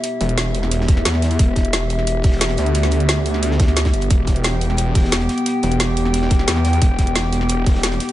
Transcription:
<<
  \new Staff \with { instrumentName = "Analog synth pad" } { \time 4/4 \key e \minor \tempo 4 = 177 << { e''1~ | e''1~ | e''1 | g''1~ |
g''1~ | g''1 | } \\ { <b g'>1~ | <b g'>1~ | <b g'>1~ | <b g'>1~ |
<b g'>1~ | <b g'>1 | } >> }
  \new Staff \with { instrumentName = "Detuned saw bass" } { \clef bass \time 4/4 \key e \minor r8 e,,2~ e,,8 e,4 | e,,2~ e,,8 e,,4 d,8~ | d,2.~ d,8 g,,8 | e,,2~ e,,8 e,,4 r8 |
r8 e,,2~ e,,8 e,4 | e,,2~ e,,8 e,,4 r8 | }
  \new DrumStaff \with { instrumentName = "Drums" } \drummode { \time 4/4 hh8 hh16 hh16 <hh sn>8 hh16 sn16 hh16 sn16 <hh bd sn>16 sn16 <hh sn>16 sn16 <hh sn>16 hh16 | <hh bd>8 <hh bd sn>16 hh16 <hh sn>8 hh16 sn16 hh8 <hh hho bd sn>16 sn16 <hh sn>16 <hh sn>16 <hh sn>16 hh16 | hh16 sn16 hh16 hh16 <hh sn>8 hh16 sn16 hh16 sn16 <hh bd sn>16 <hh sn>16 <hh sn>16 <hh bd sn>16 hh16 hh16 | <hh bd>8 <hh bd sn>16 hh16 <hh sn>8 hh16 sn16 hh8 <hh hho bd sn>16 sn16 <hh sn>16 <hh sn>16 <hh sn>16 hh16 |
hh8 hh16 hh16 <hh sn>8 hh16 sn16 hh16 sn16 <hh bd sn>16 sn16 <hh sn>16 sn16 <hh sn>16 hh16 | <hh bd>8 <hh bd sn>16 hh16 <hh sn>8 hh16 sn16 hh8 <hh hho bd sn>16 sn16 <hh sn>16 <hh sn>16 <hh sn>16 hh16 | }
>>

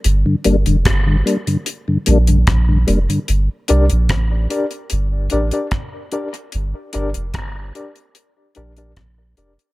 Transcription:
<<
  \new Staff \with { instrumentName = "Reed electric piano" } { \time 4/4 \key g \minor \tempo 4 = 74 r1 | r8 <d' g' bes' d''>16 r8. <d' g' bes' d''>16 r8. <d' g' bes' d''>16 <d' g' bes' d''>16 r8 <d' g' bes' d''>16 r16 | r8 <d' g' bes' d''>16 r8. <d' g' bes' d''>16 r8. <d' g' bes' d''>16 <d' g' bes' d''>16 r16 <bes' d''>16 <d' g' bes' d''>16 r16 | }
  \new Staff \with { instrumentName = "Tonewheel organ" } { \clef bass \time 4/4 \key g \minor << { r8 <g bes d'>8 r8 <g bes d'>8 r8 <g bes d'>8 r8 <g bes d'>8 | r1 | r1 | } \\ { r16 <g, d>16 r16 <g, d>16 r16 <g, d>16 r16 <g, d>16 r16 <g, d>16 r16 <g, d>16 r16 <g, d>16 r16 <g, d>16 | r1 | r1 | } >> }
  \new Staff \with { instrumentName = "Sub bass" } { \clef bass \time 4/4 \key g \minor g,,16 r16 g,,16 f,,16 g,,8 r4 bes,,8 bes,,8 f,,16 r16 | g,,16 r16 c,16 bes,,16 a,,8 r8 g,,8 a,,16 r4 r16 | g,,16 r16 g,,16 f,,16 g,,8 r4 bes,,8 bes,,8 f,,16 r16 | }
  \new DrumStaff \with { instrumentName = "Drums" } \drummode { \time 4/4 hh8 hh16 hh16 <hh bd ss>8 hh16 hh16 hh8 hh16 hh16 <hh bd ss>8 hh16 hh16 | hh8 hh16 hh16 <hh bd ss>8 hh16 hh16 hh8 hh16 hh16 <hh bd ss>8 hh16 hh16 | hh8 hh16 hh16 <hh bd ss>8 hh16 hh16 hh8 hh16 hh16 <hh bd ss>8 hh16 hh16 | }
>>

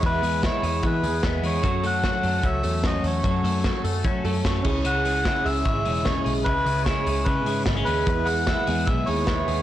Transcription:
<<
  \new Staff \with { instrumentName = "Melodica" } { \time 4/4 \key e \major \tempo 4 = 149 b'4 cis''4 b'4 r8 cis''8~ | cis''8 fis''4. e''4 dis''8 cis''8~ | cis''4. r2 r8 | fis''4. e''4. cis''8 cis''8 |
b'4 cis''4 b'4 r8 b'8~ | b'8 fis''4. e''8 cis''4. | }
  \new Staff \with { instrumentName = "Reed electric piano" } { \time 4/4 \key e \major <b e' gis' b'>1 | <cis' fis' a' cis''>1~ | <cis' fis' a' cis''>2~ <cis' fis' a' cis''>8 <cis' fis' a' cis''>4 <cis' e' gis' cis''>8~ | <cis' e' gis' cis''>1~ |
<cis' e' gis' cis''>2.~ <cis' e' gis' cis''>8 r8 | <b e' gis' b'>1 | }
  \new Staff \with { instrumentName = "Twelve-string acoustic guitar" } { \time 4/4 \key e \major <e gis b e' gis'>8 <e' gis'>8 <e gis b e' gis'>8 <b e' gis'>8 <gis b e' gis'>8 <b e' gis'>8 <e gis b e' gis'>4 | <fis cis' fis' a'>8 <cis' fis' a'>8 <fis cis' fis' a'>8 <cis' fis' a'>8 <fis cis' fis' a'>8 <cis' fis' a'>8 <fis cis' fis' a'>4 | <fis cis' fis' a'>8 <cis' fis' a'>8 <fis cis' fis' a'>8 <cis' fis' a'>8 <fis cis' fis' a'>8 <cis' fis' a'>8 <fis cis' fis' a'>8 <cis gis cis' e' gis'>8~ | <cis gis cis' e' gis'>8 <cis' e' gis'>8 <cis gis cis' e' gis'>8 <cis' e' gis'>8 <gis cis' e' gis'>8 <cis' e' gis'>8 <cis gis cis' e' gis'>4 |
<cis gis cis' e' gis'>8 <cis' e' gis'>8 <cis gis cis' e' gis'>8 <cis' e' gis'>8 <gis cis' e' gis'>8 <cis' e' gis'>8 <cis gis cis' e' gis'>4 | <e gis b e' gis'>8 <b e' gis'>8 <e gis b e' gis'>8 <b e' gis'>8 <gis b e' gis'>8 <b e' gis'>8 <e gis b e' gis'>4 | }
  \new Staff \with { instrumentName = "Clean electric guitar" } { \time 4/4 \key e \major <e gis b e'>8 gis8 e'8 gis8 b8 gis8 b8 gis8 | fis8 a8 fis'8 a8 cis'8 a8 cis'8 a8 | fis8 a8 fis'8 a8 cis'8 a8 cis'8 cis8 | cis8 gis8 e'8 gis8 cis'8 gis8 cis'8 gis8 |
cis8 gis8 e'8 gis8 cis'8 gis8 b16 cis'16 gis8 | r8 gis8 e'8 gis8 b8 gis8 b8 gis8 | }
  \new Staff \with { instrumentName = "Picked electric bass" } { \clef bass \time 4/4 \key e \major e,8 e,8. r16 e,8 e8 e,8 e,8 e,8 | fis,4~ fis,16 r16 fis,8 cis,8 e,4 e,8 | fis,8 fis,8. r16 fis,8 fis8 fis,8 fis,8 cis,8~ | cis,4~ cis,16 r16 cis,8 gis,,8 e,,4 b,,8 |
cis,8 cis,8. r16 cis,8 cis8 gis,8 gis,,8 dis,8 | e,4~ e,16 r16 e,8 b,,8 dis,4 dis,8 | }
  \new DrumStaff \with { instrumentName = "Drums" } \drummode { \time 4/4 <hh bd>8 hho8 <hh bd sn>8 hho8 <hh bd>8 hho8 <hh bd sn>8 hho8 | <hh bd>8 hho8 <hh bd sn>8 hho8 <hh bd>8 hho8 <hh bd sn>8 hho8 | <hh bd>8 hho8 <hh bd sn>8 hho8 <hh bd>8 hho8 <hh bd sn>8 <cymc bd>8 | hh8 hho8 <hh bd sn>8 hho8 <hh bd>8 hho8 <hh bd sn>8 hho8 |
<hh bd>8 hho8 <hh bd sn>8 hho8 <hh bd>8 hho8 <bd sn>8 hho8 | <hh bd>8 hho8 <hh bd sn>8 hho8 <hh bd>8 hho8 <hh bd sn>8 hho8 | }
>>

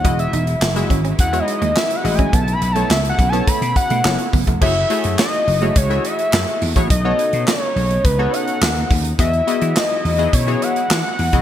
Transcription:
<<
  \new Staff \with { instrumentName = "Analog synth lead" } { \time 4/4 \key fis \dorian \tempo 4 = 105 fis''16 e''4 r8. \tuplet 3/2 { fis''8 dis''8 dis''8 e''8 fis''8 gis''8 } | \tuplet 3/2 { a''8 b''8 a''8 e''8 fis''8 a''8 } b''8 fis''4 r8 | e''4 dis''4 cis''8 e''4 r8 | dis''4 cis''4 b'8 fis''4 r8 |
e''4 dis''4 cis''8 fis''4. | }
  \new Staff \with { instrumentName = "Analog polysynth" } { \time 4/4 \key fis \dorian <gis e' fis' dis''>8 r8. <gis e' fis' e''>8 r8 <gis e' fis' cis''>8 r8. <gis e' fis' dis''>8 | r8. <b e' a' cis''>8 r8 <b e' a' cis''>8 r8. <b e' a' cis''>8 r8 | <a e' fis' gis' cis''>16 r16 <a e' fis' gis' cis''>8 r8. <a e' fis' gis' cis''>16 r16 <a e' fis' gis' e''>8 r4 <a e' fis' gis' cis''>16 | r16 <b dis' fis' a' cis''>8. r4 r16 <b dis' fis' a' cis''>8. r4 |
<b e' fis' gis' dis''>16 r16 <b e' fis' gis' dis''>8 r8. <b e' fis' gis' dis''>16 r16 <b e' fis' gis' cis''>8 r4 <b e' fis' gis' dis''>16 | }
  \new Staff \with { instrumentName = "Clean electric guitar" } { \time 4/4 \key fis \dorian e'16 r16 dis'16 r8. cis'16 cis'16 r16 b16 r16 gis16 cis'16 r8 cis'16 | b16 r8 a16 cis'16 r8 b16 a16 r8 a16 r8 b16 a16 | r1 | r1 |
r1 | }
  \new Staff \with { instrumentName = "String section" } { \clef bass \time 4/4 \key fis \dorian << { e'1~ | e'1 | fis'1 | dis'1 |
e'1 | } \\ { <e fis gis>1 | <cis a b>1 | <e a gis'>1 | <cis b>1 |
<e fis gis>1 | } >> }
  \new Staff \with { instrumentName = "Slap bass" } { \clef bass \time 4/4 \key fis \dorian e,,8 e,,8 fis,,8 gis,,8 e,8 r16 dis,16 r8 a,,8 | b,,8 b,,8 cis,8 b,,8 r16 b,16 r16 b,16 fis,,16 r16 fis,,16 e,,16 | fis,,8 r16 fis,16 r8 fis,,8 cis,8 r8 fis,16 r16 e,16 a,,16 | b,,8 r16 b,16 r8 b,,8 cis,8 r8 dis,8 dis,8 |
e,8 r16 e16 r8 e,8 b,8 r8 e16 r16 e,16 e,,16 | }
  \new DrumStaff \with { instrumentName = "Drums" } \drummode { \time 4/4 <hh bd>16 hh16 hh16 hh16 <hc sn>16 hh16 <hh bd>16 hh16 <hh bd>16 hh16 hh16 hh16 <hc sn>16 hh16 hho16 <hh bd>16 | <hh bd>16 hh16 hh16 hh16 <hc sn>16 hh16 <hh bd>16 hh16 <hh bd>16 hh16 <hh bd>16 hh16 <hc sn>16 hh16 <hho bd>16 <hh bd>16 | <cymc bd>8 hh16 hh16 <hc sn>16 hh16 hho16 hh16 <hh bd>16 hh16 hh16 hh16 <hc sn>16 hh16 hho16 <hh bd>16 | <hh bd>8 hh16 hh16 <hc sn>8 hho16 hh16 <hh bd>8 hh16 hh16 <hc sn>16 hh16 <hho bd>16 hh16 |
<hh bd>16 hh16 hh16 hh16 <hc sn>8 hho16 hh16 <hh bd>16 hh16 hh16 hh16 <hc sn>8 hho16 <hh bd>16 | }
>>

